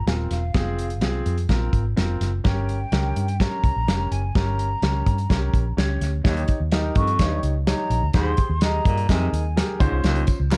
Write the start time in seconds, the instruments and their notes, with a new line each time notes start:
0.06 fingered electric bass D#1, grand piano C4 F4 A#4, flute G#5, snare, closed hi-hat
0.31 fingered electric bass E1, flute F5, snare, closed hi-hat
0.54 fingered electric bass F1, grand piano C4 F4 G#4, kick, snare, closed hi-hat
0.79 closed hi-hat
0.90 closed hi-hat
1.01 fingered electric bass C2, grand piano C4 F4 G#4, snare, closed hi-hat
1.26 fingered electric bass F2, closed hi-hat
1.38 closed hi-hat
1.49 fingered electric bass A#1, grand piano C4 F4 A#4, kick, snare, closed hi-hat
1.73 fingered electric bass G#1, kick, closed hi-hat
1.96 fingered electric bass F1, grand piano C4 F4 A#4, snare, closed hi-hat
2.21 fingered electric bass F#1, snare, closed hi-hat
2.44 fingered electric bass G1, grand piano C#4 G4 A#4, flute G5, kick, snare, closed hi-hat
2.69 closed hi-hat
2.92 fingered electric bass C#2, grand piano C#4 G4 A#4, snare, closed hi-hat
3.16 fingered electric bass G2, closed hi-hat
3.28 closed hi-hat
3.40 grand piano C#4 G4 A#4, flute A#5, kick, snare, closed hi-hat
3.64 fingered electric bass C2, kick, closed hi-hat
3.76 fingered electric bass A#1
3.87 fingered electric bass F1, grand piano C#4 G4 A#4, snare, closed hi-hat
4.11 fingered electric bass F#1, flute G#5, closed hi-hat
4.35 fingered electric bass G1, grand piano C#4 G4 A#4, flute A#5, kick, snare, closed hi-hat
4.59 closed hi-hat
4.82 fingered electric bass C#2, grand piano C#4 G4 A#4, snare, closed hi-hat
5.06 fingered electric bass G2, kick, closed hi-hat
5.18 closed hi-hat
5.29 fingered electric bass C2, grand piano C#4 G4 A#4, kick, snare, closed hi-hat
5.53 fingered electric bass A#1, kick, closed hi-hat
5.77 fingered electric bass C#2, grand piano C#4 G4 C#5, snare, closed hi-hat
6.01 fingered electric bass D2, snare, closed hi-hat
6.24 baritone saxophone D#2, fingered electric bass D#2, grand piano D#4 G4 C#5, kick, snare, closed hi-hat
6.37 closed hi-hat
6.48 kick, closed hi-hat
6.60 fingered electric bass D#2
6.72 grand piano D#4 G4 A#4, snare, closed hi-hat
6.95 baritone saxophone F2, fingered electric bass G2, flute C#6, kick, closed hi-hat
7.07 closed hi-hat
7.19 fingered electric bass D#2, baritone saxophone G2, grand piano D#4 G4 C#5, kick, snare, closed hi-hat
7.43 fingered electric bass C#2, closed hi-hat
7.67 grand piano D#4 G4 C#5, flute A#5, snare, closed hi-hat
7.90 fingered electric bass A#1, closed hi-hat
8.02 fingered electric bass D2
8.13 fingered electric bass D#2, baritone saxophone G#2, grand piano G4 G#4 C5, flute C6, kick, snare, closed hi-hat
8.37 kick, closed hi-hat
8.50 fingered electric bass D#2
8.61 grand piano G4 G#4 D#5, flute A#5, snare, closed hi-hat
8.85 fingered electric bass G2, baritone saxophone A#2, kick, closed hi-hat
8.97 closed hi-hat
9.09 fingered electric bass F2, baritone saxophone C3, grand piano D#4 G#4 A#4, flute G#5, kick, snare, closed hi-hat
9.33 fingered electric bass D#2, closed hi-hat
9.56 grand piano G4 G#4 A#4, snare, closed hi-hat
9.80 fingered electric bass C#2, baritone saxophone G#2, grand piano C#4 F4 C5, kick, closed hi-hat
9.92 fingered electric bass C2
10.04 fingered electric bass C#2, baritone saxophone D#2, snare, closed hi-hat, tambourine
10.16 closed hi-hat
10.27 kick, closed hi-hat, tambourine
10.40 fingered electric bass C#2
10.51 grand piano C#4 F4 A#4, snare, clap, closed hi-hat, tambourine